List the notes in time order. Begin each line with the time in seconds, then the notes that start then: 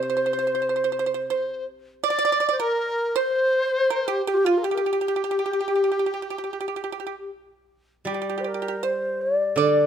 Already playing: C3 C5
0.03 C5
0.10 C5
0.17 C5
0.26 C5
0.33 C5
0.39 C5
0.47 C5
0.55 C5
0.62 C5
0.69 C5
0.76 C5
0.84 C5
0.92 C5
0.99 C5
1.06 C5
1.14 C5
1.30 C5
2.04 D5
2.10 D5
2.19 D5
2.25 D5
2.32 D5
2.40 D5
2.49 C5 D5
2.60 A#4
3.16 C5
3.90 A#4
4.04 G4 A#4
4.08 G4
4.25 G4
4.34 F4
4.38 G4
4.45 F4
4.58 A#4
4.63 G4
4.71 G4 A#4
4.77 G4
4.82 G4
4.86 G4
4.93 G4
5.01 G4
5.08 G4
5.16 G4
5.24 G4
5.31 G4
5.39 G4
5.46 G4
5.53 G4
5.61 G4
5.68 G4
5.76 G4
5.84 G4
5.92 G4
5.99 G4
6.06 G4
6.14 G4
6.22 G4
6.30 G4
6.38 G4
6.44 G4
6.53 G4
6.61 G4
6.68 G4
6.76 G4
6.84 G4
6.92 G4
7.00 G4
7.07 G4
8.05 G3 G4
8.14 G4
8.22 G4
8.30 G4
8.38 G4 C5
8.44 G4 A#4
8.54 G4
8.62 G4
8.68 G4
8.83 C5
9.21 D5
9.56 D3 D5
9.61 D5